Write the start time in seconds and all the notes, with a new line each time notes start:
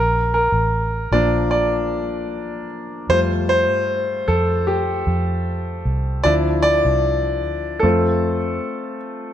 Already playing: A#1 A#4
0.34 A#4
0.52 A1
1.12 A#1 F3 A#3 D4 D5
1.51 D5
3.09 F2 G3 A3 F4 C5
3.49 C5
3.69 G2
4.28 F2 A4
4.67 G4
5.07 F2
5.85 C2
6.24 D2 F3 D4 E4 D5
6.63 D5
6.85 C2
7.44 D2
7.79 F2 A3 A4
7.84 C4 F4